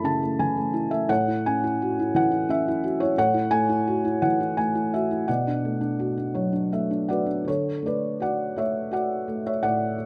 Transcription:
Already playing: F#2 E3 A3 E4 E5 A5 B5
0.04 C#3 A5
0.23 A3
0.39 E3 G#5
0.57 A3
0.74 E4
0.91 A3 E5
1.09 A2 C#5 F#5
1.28 E4
1.46 C#4 G#5
1.64 E4
1.82 F#4
1.99 E4
2.15 E3 F#5
2.31 E4
2.49 C#4 E5
2.68 E4
2.84 F#4
3.00 E4 C#5
3.18 A2 C#5 F#5
3.34 E4
3.51 A3 G#5
3.69 E4
3.87 F#4
4.05 E4
4.22 E3 F#5
4.40 E4
4.57 A3 G#5
4.75 E4
4.94 F#4 E5
5.11 E4
5.28 B2 D5 F#5
5.47 D4
5.65 A3
5.81 D4
5.99 F#4
6.17 D4
6.34 F#3 C#5
6.53 D4
6.72 A3 E5
6.91 D4
7.08 F#4 B4 D5 F#5
7.26 D4
7.45 D3 C#5
7.49 A4
7.83 A3 D5
7.87 B4
8.20 F#4 D5 F#5
8.56 A3 C#5 E5
8.91 F#4 D5 F#5
9.28 A3
9.47 C#5 E5
9.63 A2 D5 F#5
9.98 A3

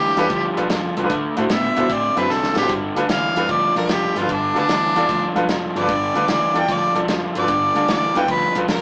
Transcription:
Already playing: G2 E3 G4
0.16 E2 G2 E3 D4 F4 A4 B4, snare, closed hi-hat
0.30 D2 G2 F3, kick, closed hi-hat
0.56 B1 G2 F3 D4 F4 A4 B4, closed hi-hat
0.70 F1 G2 F3, snare, closed hi-hat
0.97 C2 G2 F3 A4 B4, closed hi-hat
1.03 D4 F4 A4 B4
1.10 D2 D3 A3, kick, closed hi-hat
1.37 A2 D3 A3 E4 F#4 A4 C5, closed hi-hat
1.50 A2 D3 B3 E5, snare, closed hi-hat
1.76 B2 D3 B3 E4 F#4 A4 C5, closed hi-hat
1.90 A2 D3 C4 D5, kick, closed hi-hat
2.16 F#2 D3 C4 E4 F#4 A4 B4 C5, closed hi-hat
2.30 C2 D3 C4 A4, snare
2.43 snare
2.54 A1 D3 C4 G4 A4 B4, snare
2.61 E4 F#4 A4 C5
2.69 G1 G2 D3, kick, closed hi-hat
2.95 D2 G2 D3 D4 F4 A4 B4, closed hi-hat
3.09 D2 G2 E3 F5, snare, closed hi-hat
3.36 E2 G2 E3 D4 F4 A4 B4, closed hi-hat
3.49 D2 G2 F3 D5, kick, closed hi-hat
3.76 B1 G2 F3 D4 F4 A4 A#4 D5, closed hi-hat
3.89 F1 G2 F3 G4, snare, closed hi-hat
4.15 G1 G2 F3 F4 A4 B4, closed hi-hat
4.20 D4 F4 A4 B4
4.29 G1 G2 D3 D4, kick, closed hi-hat
4.54 D2 G2 D3 D4 F4 A4 B4, closed hi-hat
4.59 D4
4.69 D2 G2 E3, snare, closed hi-hat
4.95 E2 G2 E3 D4 F4 A4 D5, closed hi-hat
5.09 D2 G2 F3, kick, closed hi-hat
5.35 B1 G2 F3 D4 F4 A4 B4, closed hi-hat
5.49 F1 G2 F3, snare, closed hi-hat
5.75 G1 G2 F3 A4 B4 D5, closed hi-hat
5.81 D4 F4 A4 B4
5.89 G1 G2 D3, kick, closed hi-hat
6.14 D2 G2 D3 D4 F4 A4 B4, closed hi-hat
6.28 D2 G2 E3 D5, snare, closed hi-hat
6.54 E2 G2 E3 D4 F4 A4 D5, closed hi-hat
6.59 G5
6.69 D2 G2 F3 D5, kick, closed hi-hat
6.94 B1 G2 F3 D4 F4 A4 D5, closed hi-hat
7.08 F1 G2 F3, snare, closed hi-hat
7.34 G1 G2 F3 A4 B4, closed hi-hat
7.39 D4 F4 A4 B4 D5
7.48 G1 G2 D3, kick, closed hi-hat
7.75 D2 G2 D3 D4 F4 A4 D5, closed hi-hat
7.88 D2 G2 E3 D5, snare, closed hi-hat
8.14 E2 G2 E3 D4 F4 A4 B4, snare, closed hi-hat
8.19 G5
8.28 D2 G2 F3 B4, kick, closed hi-hat
8.55 B1 G2 F3 D4 F4 A4 B4, closed hi-hat
8.68 F1 G2 F3 A#4, snare, closed hi-hat

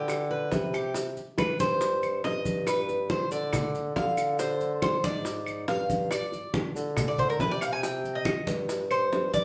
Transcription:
Already playing: D3 G4 B4
0.08 high bongo, high conga, claves, maracas
0.30 B4, high bongo, high conga
0.52 C3, high bongo, low bongo, high conga, maracas
0.73 G4, high bongo, high conga, claves, maracas
0.94 high bongo, high conga, maracas
1.17 high conga, maracas
1.38 B4, high bongo, high conga, claves, maracas
1.59 G2 C5, high conga, maracas
1.81 high bongo, high conga, maracas
2.03 high conga, claves, maracas
2.24 G2 D#5, high bongo, low bongo, high conga, maracas
2.45 high conga, maracas
2.67 B4, high bongo, high conga, claves, maracas
2.89 high bongo, high conga, maracas
3.10 C5, high bongo, high conga, maracas
3.32 D3 D5, high bongo, high conga, maracas
3.53 high bongo, high conga, low conga, claves, maracas
3.75 high conga, maracas
3.96 D3 F5, high bongo, low bongo, high conga, maracas
4.17 high bongo, claves, maracas
4.39 C5, high bongo, high conga, maracas
4.61 high conga, maracas
4.82 C5, high bongo, high conga, claves, maracas
5.04 G#2 D5, high conga, maracas
5.25 high bongo, high conga, maracas
5.46 high conga, claves, maracas
5.68 G2 F5, high bongo, low bongo, high conga, maracas
5.90 high conga, maracas
6.11 D5, high bongo, high conga, claves, maracas
6.32 high bongo, high conga, maracas
6.54 high bongo, high conga, maracas
6.75 D3, high bongo, high conga, maracas
6.97 high bongo, high conga, low conga, claves, maracas
7.08 D5
7.18 D3 C5, high conga, low conga, maracas
7.30 A#4
7.40 C3 B4, high bongo, low bongo, high conga, maracas
7.51 D5
7.61 F5, high bongo, claves, maracas
7.73 G#5
7.83 G5, high bongo, high conga, maracas
8.04 high conga, maracas
8.15 D#5
8.25 high bongo, high conga, claves, maracas
8.47 G2, high conga, maracas
8.69 high bongo, high conga, maracas
8.91 C5, high conga, claves, maracas
9.12 G2, high bongo, low bongo, high conga, maracas
9.34 D5, high conga, maracas

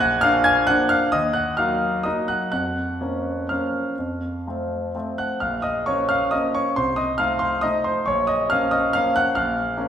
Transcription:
Already playing: A#1 G#5 G#6
0.00 F#5 F#6
0.21 F3 A#3 D4 F5 F6
0.44 G#5 G#6
0.67 F3 A#3 D4 F#5 F#6
0.89 F5 F6
1.12 D#2 D#5 D#6
1.33 F#5 F#6
1.57 F#3 A#3 D#4 F5 F6
2.04 F#3 A#3 D#4 D#5 D#6
2.28 F#5 F#6
2.52 F2 F#5 F#6
3.01 F3 A#3 C#4
3.49 F3 A#3 C#4 F5 F6
3.99 F2
4.47 F3 A3 C4
4.95 F3 A3 C4
5.18 F#5 F#6
5.40 A#1 F5 F6
5.62 D#5 D#6
5.86 F3 A#3 C#4 C#5 C#6
6.09 F5 F6
6.31 F3 A#3 C#4 D#5 D#6
6.55 C#5 C#6
6.76 C2 C5 C6
6.96 D#5 D#6
7.18 F3 A3 D#4 F5 F6
7.39 C5 C6
7.61 F3 A3 D#4 D#5 D#6
7.84 C5 C6
8.06 A#1 C#5 C#6
8.27 D#5 D#6
8.50 F3 A#3 C#4 F5 F6
8.71 D#5 D#6
8.93 F3 A#3 C#4 F5 F6
9.16 F#5 F#6
9.35 A#1 F5 F6
9.77 F3 A#3 C#4

